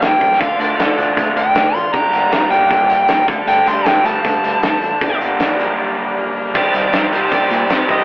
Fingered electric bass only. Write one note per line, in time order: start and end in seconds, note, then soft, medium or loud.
0.01 0.13 A#1 medium
0.21 0.33 C2 medium
0.40 0.52 D2 medium
0.60 0.71 D2 medium
0.79 0.91 D2 medium
0.99 1.10 D2 medium
1.17 1.29 D2 medium
1.36 1.48 D2 medium
1.55 1.67 D2 medium
1.74 1.86 A1 medium
1.94 2.06 G1 medium
2.12 2.25 G1 medium
2.32 2.44 G1 loud
2.50 2.63 G1 medium
2.70 2.94 G1 loud
3.08 3.21 A#1 medium
3.28 3.40 D2 medium
3.46 3.59 D2 medium
3.66 3.78 D2 medium
3.85 3.97 D2 medium
4.04 4.16 D2 medium
4.25 4.37 D2 medium
4.44 4.56 D2 medium
4.63 4.75 D2 medium
4.83 4.94 A1 medium
5.01 5.13 G1 medium
5.21 5.33 G1 medium
5.40 5.52 G1 medium
5.60 5.71 A#1 medium
6.55 6.68 C2 medium
6.74 6.87 C2 medium
6.93 7.06 G2 loud
7.13 7.25 C2 medium
7.32 7.44 A#1 medium
7.51 7.63 A#2 medium
7.71 7.83 C3 medium
7.88 8.01 C2 medium